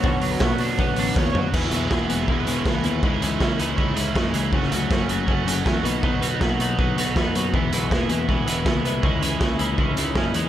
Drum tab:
CC |----------------|x---------------|----------------|----------------|
HH |--o---o---o-----|--x---x---x---x-|--x---x---x---x-|--x---x---x---x-|
SD |----o-------o---|-o--o-------o---|----o-------o---|-o--o-------o---|
FT |--------------o-|----------------|----------------|----------------|
BD |o---o---o---o---|o---o---o---o---|o---o---o---o---|o---o---o---o---|

CC |----------------|----------------|----------------|
HH |--x---x---x---x-|--x---x---x---x-|--x---x---x---x-|
SD |----o-------o---|----o-------o---|----o-------o---|
FT |----------------|----------------|----------------|
BD |o---o---o---o---|o---o---o---o---|o---o---o---o---|